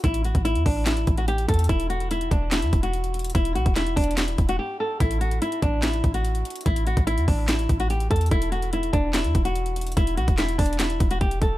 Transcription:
0.04 A1 E4, kick, closed hi-hat
0.14 closed hi-hat
0.24 F#4, closed hi-hat
0.35 A1, kick, closed hi-hat
0.45 E4, closed hi-hat
0.55 E2, closed hi-hat
0.66 A1 D4, kick, open hi-hat
0.86 E4, snare, clap, closed hi-hat
0.97 closed hi-hat
1.07 A1, kick, closed hi-hat
1.18 F#4, closed hi-hat
1.28 G4, closed hi-hat
1.38 closed hi-hat
1.49 E2 A4, kick, closed hi-hat
1.54 closed hi-hat
1.59 closed hi-hat
1.64 closed hi-hat
1.69 E1 E4, kick, closed hi-hat
1.80 closed hi-hat
1.90 F#4, closed hi-hat
2.00 closed hi-hat
2.11 E4, closed hi-hat
2.21 closed hi-hat
2.31 E1 D4, kick, closed hi-hat
2.51 E4, snare, clap, closed hi-hat
2.62 E2, closed hi-hat
2.73 E1, kick, closed hi-hat
2.83 F#4, closed hi-hat
2.93 closed hi-hat
3.04 closed hi-hat
3.14 closed hi-hat
3.19 closed hi-hat
3.24 closed hi-hat
3.30 closed hi-hat
3.35 E1 E4, kick, closed hi-hat
3.45 closed hi-hat
3.55 B1 F#4, closed hi-hat
3.66 E1, kick, closed hi-hat
3.76 E4, snare, clap, closed hi-hat
3.87 closed hi-hat
3.96 E1 D4, kick, closed hi-hat, open hi-hat
4.04 closed hi-hat
4.11 closed hi-hat
4.17 E4, snare, clap, closed hi-hat
4.28 closed hi-hat
4.38 E1, kick, closed hi-hat
4.49 F#4, closed hi-hat
4.59 G4
4.80 A4
5.00 A1 E4, kick, closed hi-hat
5.11 closed hi-hat
5.21 F#4, closed hi-hat
5.31 closed hi-hat
5.42 E4, closed hi-hat
5.52 closed hi-hat
5.62 A1 D4, kick, closed hi-hat
5.82 E4, snare, clap, closed hi-hat
5.93 closed hi-hat
6.04 A1, kick, closed hi-hat
6.14 F#4, closed hi-hat
6.25 closed hi-hat
6.35 closed hi-hat
6.45 closed hi-hat
6.50 closed hi-hat
6.56 closed hi-hat
6.61 closed hi-hat
6.66 A1 E4, kick, closed hi-hat
6.76 closed hi-hat
6.87 F#4, closed hi-hat
6.97 A1, kick, closed hi-hat
7.07 E4, closed hi-hat
7.18 E2, closed hi-hat
7.28 A1 D4, kick, open hi-hat
7.48 E4, snare, clap, closed hi-hat
7.59 closed hi-hat
7.69 A1, kick, closed hi-hat
7.80 F#4, closed hi-hat
7.90 G4, closed hi-hat
8.00 closed hi-hat
8.11 E2 A4, kick, closed hi-hat
8.16 closed hi-hat
8.21 closed hi-hat
8.26 closed hi-hat
8.31 E1 E4, kick, closed hi-hat
8.42 closed hi-hat
8.52 F#4, closed hi-hat
8.62 closed hi-hat
8.73 E4, closed hi-hat
8.83 closed hi-hat
8.93 E1 D4, kick, closed hi-hat
9.13 E4, snare, clap, closed hi-hat
9.24 E2, closed hi-hat
9.35 E1, kick, closed hi-hat
9.45 F#4, closed hi-hat
9.56 closed hi-hat
9.66 closed hi-hat
9.76 closed hi-hat
9.81 closed hi-hat
9.87 closed hi-hat
9.92 closed hi-hat
9.97 E1 E4, kick, closed hi-hat
10.07 closed hi-hat
10.17 B1 F#4, closed hi-hat
10.28 E1, kick, closed hi-hat
10.38 E4, snare, clap, closed hi-hat
10.49 closed hi-hat
10.58 E1 D4, kick, closed hi-hat, open hi-hat
10.66 closed hi-hat
10.73 closed hi-hat
10.79 E4, snare, clap, closed hi-hat
10.90 closed hi-hat
11.00 E1, kick, closed hi-hat
11.11 F#4, closed hi-hat
11.21 E1 G4, kick, closed hi-hat
11.31 closed hi-hat
11.42 E1 A4, kick, closed hi-hat

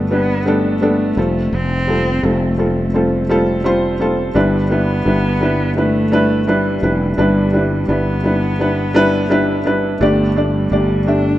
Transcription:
Already playing: G1 G2 G3 A3 B3 D4 A4
0.11 G3 B3 D4 B4
0.46 G3 A3 B3 D4 A4
0.81 G3 B3 D4 A4
1.17 F1 G3 C4 F4 A4
1.53 F1 C4
1.88 G3 C4 F4 A4
2.23 F1 G3 A3 C4 F4 A4
2.58 G3 A3 C4 F4 A4
2.94 G3 C4 F4 A4
3.29 G3 C4 F4 A4
3.64 G3 C4 F4 C5
4.00 G3 C4 F4 A4
4.35 G1 G2 G3 D4 E4 B4
4.70 G3 B3 D4 E4 B4
5.05 G1 G3 D4 E4 B4
5.41 G3 D4 E4 B4
5.76 G3 A3 D4 E4 B4
6.12 G3 D4 E4 B4
6.47 G3 D4 E4 B4
6.82 F1 G3 D4 E4 B4
7.17 G1 G2 G3 D4 E4 B4
7.53 G3 D4 E4 B4
7.88 G1 G3 B3 D4 E4 B4
8.24 G3 D4 E4 B4
8.59 G3 D4 E4 B4
8.94 G3 D4 E4 B4
9.30 G3 D4 E4 B4
9.65 G3 D4 E4 B4
10.01 G1 G2 A3 D4 G4 D5
10.36 A3 D4 G4 D5
10.58 G3
10.71 G1 A3 D4 G4 D5
11.06 A3 D4 G4 E5

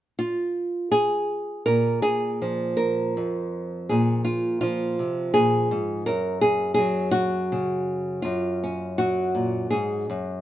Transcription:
0.19 F4
0.91 G#4
1.66 A#2 A#4
2.02 G#4
2.42 F3
2.77 A#4
3.17 F2
3.89 A#2 G#4
4.25 F4
4.61 F3 F4
4.99 C3
5.34 A#2 G#4
5.71 G#2
6.06 F#2 A#4
6.41 G#4
6.74 G#4
6.78 F#3
7.11 F#4
7.52 C#3
8.22 F#2 F4
8.63 C#4
8.98 F#3 F#4
9.35 A#2
9.70 G#2 G#4
10.10 F#2

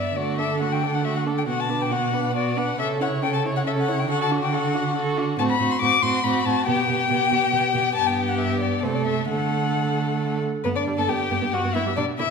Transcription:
Already playing: G2 B3 D5 E5
0.16 D3 A3 F#4 D5
0.38 D4 A4 E5
0.60 A3 F#4 F#5
0.72 G5
0.83 D4 A4
0.94 F#5
1.04 A3 F#4 E5
1.16 F#5
1.26 D4 A4
1.38 G5
1.47 B2 B3 F#4 F#5
1.60 A5
1.69 D4 B4
1.82 G5
1.91 B3 F#4 F#5
2.13 D4 B4
2.35 B3 F#4 D5
2.57 D4 B4 F#5
2.79 C#3 C#4 A4 E5
3.00 E4 C#5 F#5
3.23 C#4 A4 G5
3.34 A5
3.45 E4 C#5
3.56 F#5
3.66 C#4 A4 E5
3.79 F#5
3.88 E4 C#5
4.00 G5
4.09 D3 F#4 A4 F#5
4.22 A5
4.31 D4 F#4
4.43 G5
4.53 F#4 A4 F#5
4.74 D4 F#4
4.96 F#4 A4
5.17 D4 F#4
5.38 A2 C4 F#4 A5
5.50 B5
5.60 A2 C4 F#4
5.71 C6
5.81 A2 C4 F#4 D6
6.02 A2 C4 F#4 C6
6.23 A2 C4 F#4 B5
6.45 A2 C4 F#4 A5
6.67 B2 B3 G4 G5
6.88 B2 B3 G4
7.10 B2 B3 G4
7.31 B2 B3 G4
7.52 B2 B3 G4
7.74 B2 B3 G4
7.95 G2 B3 G4 A5
8.07 G5
8.28 F#5
8.38 E5
8.61 D5
8.83 C3 A3 A4 C5
8.95 D5
9.06 E5
9.28 D3 A3 A4 F#5
10.64 G2 B3 B4
10.76 D4 D5
10.87 G2 G3
10.98 G2 B3 A4 A5
11.08 G2 B3 G4 G5
11.31 G2 B3
11.42 G2 B3
11.53 G2 G3 F#4 F#5
11.64 G2 B3
11.74 G2 B3 E4 E5
11.86 G2 G3
11.97 B2 G3 D4 D5
12.18 B2 D3 E4 E5

